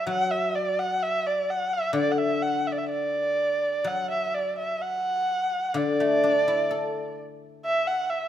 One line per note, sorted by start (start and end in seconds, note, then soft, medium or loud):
0.07 2.88 F#3 medium
0.07 0.32 F#5 loud
0.31 0.56 E5 medium
0.55 0.80 D5 medium
0.79 1.04 F#5 medium
1.02 1.28 E5 medium
1.26 1.52 D5 medium
1.50 1.74 F#5 medium
1.73 1.95 E5 medium
1.93 4.81 D3 medium
1.93 2.13 D5 medium
2.11 2.19 F#5 medium
2.18 2.44 E5 medium
2.42 2.68 F#5 medium
2.67 2.73 E5 medium
2.72 2.79 D5 medium
2.78 2.88 E5 medium
2.89 3.88 D5 medium
3.84 6.70 F#3 soft
3.84 4.10 F#5 medium
4.11 4.35 E5 medium
4.34 4.58 D5 medium
4.59 4.83 E5 medium
4.82 5.78 F#5 medium
5.74 8.28 D3 medium
5.74 7.18 D5 medium
6.00 7.88 A3 soft
6.24 8.11 D4 soft
6.48 8.28 E4 soft
6.71 8.28 A4 soft
7.65 7.89 E5 loud
7.87 8.11 F#5 medium
8.10 8.28 E5 medium